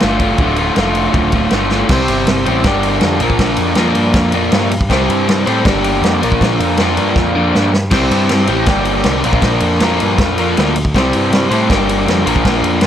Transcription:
0.00 G1 A2 D3 A3 F4, snare, ride
0.19 D3 A3 F4, kick, ride
0.38 D1 D2 A2 D3 A3, kick, ride
0.43 F4
0.56 A3 F4, ride
0.62 D3
0.76 F1 D2 A2 D3 A3 F4, snare, ride
0.95 ride
1.14 D1, kick, ride
1.32 A3 F4, kick, ride
1.37 D3
1.50 G1 A2 D3 A3, snare, ride
1.55 F4
1.71 D3 A3 F4, snare
1.89 C2 C3 G3 C4 E4 G4 C5, kick, snare, crash
2.08 G1, ride
2.27 G1, snare, ride
2.46 A1 C3 G3 C4 E4 G4 C5, ride
2.63 G1 G2 D3 G3 A#3 D4 G4, kick, snare, ride
2.83 ride
3.01 F2, snare, ride
3.20 A#1 A#2 F3 A#3 D4 F4 A#4, ride
3.30 kick
3.39 A#1, kick, snare, ride
3.56 F2, ride
3.75 F2 A#2 F3 A#3 D4 F4 A#4, snare, ride
3.94 G2, ride
4.14 F2, kick, snare, ride
4.32 A#3 D4 F4 A#4, ride
4.36 A#2 F3
4.52 G2, snare, ride
4.71 ride
4.81 kick
4.89 C2 C3 G3 C4 E4 G4 C5, kick, snare, ride
5.09 G2, ride
5.28 G2, snare, ride
5.46 A2 C3 G3 C4 E4 G4 C5, ride
5.64 G1 G2 D3 G3 A#3 D4 G4, kick, snare, ride
5.84 ride
6.01 F2, snare, ride
6.21 A#1 A#2 F3 A#3 D4 F4 A#4, ride
6.32 kick
6.41 A#1, kick, snare, ride
6.60 F2, ride
6.77 F2 A#2 F3 A#3 D4, snare, ride
6.82 F4 A#4
6.97 G2, ride
7.16 F2, kick, snare
7.35 A#2 F3 A#3 D4 F4 A#4
7.55 G2, snare
7.74 snare
7.91 C2 C3 G3 C4 E4 G4 C5, kick, snare, crash, ride
8.11 G2, ride
8.29 G2, snare, ride
8.47 A1 C3 G3 C4 E4 G4 C5, ride
8.66 G1 G2 D3 G3 A#3 D4 G4, kick, snare, ride
8.85 ride
9.04 C2, snare, ride
9.23 A#1 A#2 F3 A#3 D4 F4 A#4, ride
9.33 kick
9.42 A#1, kick, snare, ride
9.60 F2, ride
9.80 F2 A#2 F3 A#3 D4 F4 A#4, snare, ride
10.00 G2, ride
10.18 F2, kick, snare, ride
10.38 F3 A#3 D4 F4 A#4, ride
10.42 A#2
10.57 D2, snare, ride
10.76 ride
10.85 kick
10.94 C2 C3 G3 C4 E4 G4 C5, kick, snare, ride
11.13 G2, ride
11.31 G2, snare, ride
11.51 A2 C3 G3 C4 E4 G4 C5, ride
11.69 G1 G2 D3 G3 A#3 D4 G4, kick, snare, ride
11.89 ride
12.07 F2, snare, ride
12.26 A#1 A#2 F3 A#3 D4 F4 A#4, ride
12.36 kick
12.45 A#1, kick, snare, ride
12.62 F2, ride
12.81 F2 A#2, snare, ride

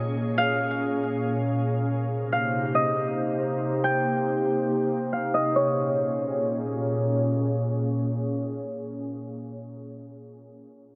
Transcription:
Already playing: A#2 A#3 C#4 G#4 C#5 D#5
0.38 F5
2.11 C3 A#3 D#4 G4 C5
2.32 F5
2.75 D#5
3.84 G5
5.13 F5
5.34 D#5
5.56 A#2 A#3 C#4 G#4 C#5

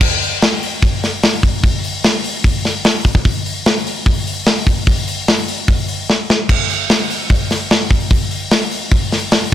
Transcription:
0.01 kick, crash
0.22 open hi-hat
0.42 snare, open hi-hat
0.63 open hi-hat
0.82 kick, open hi-hat
1.03 snare, open hi-hat
1.23 snare, open hi-hat
1.43 kick, open hi-hat
1.64 kick, open hi-hat
1.84 open hi-hat
2.04 snare, open hi-hat
2.24 open hi-hat
2.44 kick, open hi-hat
2.65 snare, open hi-hat
2.85 snare, open hi-hat
3.05 kick, open hi-hat
3.15 kick
3.25 kick, open hi-hat
3.46 open hi-hat
3.66 snare, open hi-hat
3.87 open hi-hat
4.06 kick, open hi-hat
4.27 open hi-hat
4.46 snare, open hi-hat
4.67 kick, open hi-hat
4.87 kick, open hi-hat
5.08 open hi-hat
5.28 snare, open hi-hat
5.48 open hi-hat
5.68 kick, open hi-hat
5.89 open hi-hat
6.10 snare
6.30 snare
6.49 kick, crash
6.70 open hi-hat
6.90 snare, open hi-hat
7.10 open hi-hat
7.30 kick, open hi-hat
7.50 snare, open hi-hat
7.71 snare, open hi-hat
7.91 kick, open hi-hat
8.11 kick, open hi-hat
8.31 open hi-hat
8.51 snare, open hi-hat
8.71 open hi-hat
8.91 kick, open hi-hat
9.12 snare, open hi-hat
9.32 snare, open hi-hat

